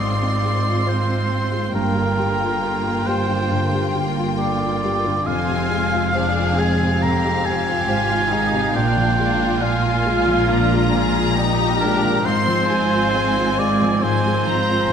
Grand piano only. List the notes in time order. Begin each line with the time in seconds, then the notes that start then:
Already playing: G#3 C4 F4 C5
0.00 G#2
0.22 C4
0.44 G#3
0.66 F4
0.87 C5
1.08 F4
1.29 C4
1.51 G#3
1.73 G2
1.95 D3
2.18 G3
2.40 F4
2.62 A#4
2.84 F4
3.06 G3
3.28 D3
3.50 G2
3.73 G3
3.95 D3
4.16 F4
4.38 A#4
4.62 F4
4.83 G3
5.05 D3
5.26 F2
5.49 C3
5.71 G#3
5.93 F4
6.15 C5
6.37 F4
6.58 G#3
6.81 C3
7.02 F2
7.25 G#3
7.46 C3
7.67 F4
7.88 C5
8.10 F4
8.32 G#3
8.53 C3
8.75 A#2
8.97 F3
9.19 G#3
9.40 F4
9.62 D5
9.84 F4
10.05 G#3
10.27 F3
10.49 A#2
10.72 G#3
10.94 F3
11.16 F4
11.38 D5
11.60 F4
11.83 G#3
12.05 F3
12.26 G#2
12.48 F3
12.70 G#3
12.94 F4
13.15 C5
13.37 F4
13.59 G#3
13.82 F3
14.03 G#2
14.26 G#3
14.47 F3
14.69 F4